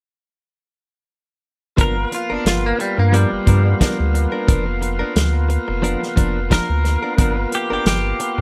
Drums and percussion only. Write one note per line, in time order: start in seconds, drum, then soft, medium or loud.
1.78 kick loud
1.78 closed hi-hat medium
2.12 closed hi-hat medium
2.46 snare loud
2.46 closed hi-hat medium
2.80 closed hi-hat medium
3.14 closed hi-hat medium
3.47 kick medium
3.47 closed hi-hat medium
3.81 kick medium
3.81 snare loud
3.81 closed hi-hat medium
4.15 closed hi-hat medium
4.48 kick loud
4.48 closed hi-hat medium
4.82 closed hi-hat medium
5.16 snare loud
5.16 closed hi-hat medium
5.50 closed hi-hat medium
5.84 closed hi-hat medium
6.03 snare soft
6.17 kick medium
6.17 closed hi-hat medium
6.51 kick medium
6.51 snare medium
6.51 closed hi-hat medium
6.85 snare soft
6.85 closed hi-hat medium
7.18 kick loud
7.18 closed hi-hat medium
7.52 closed hi-hat medium
7.86 snare loud
7.86 closed hi-hat medium
8.20 closed hi-hat medium